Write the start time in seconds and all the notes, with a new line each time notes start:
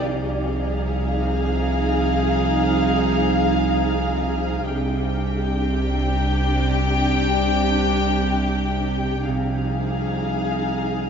0.02 C2 C3 F3 D#4 G#4 F5
4.66 C2 C3 G3 D4 G4 G5
9.26 C2 C3 F3 D#4 G#4 F5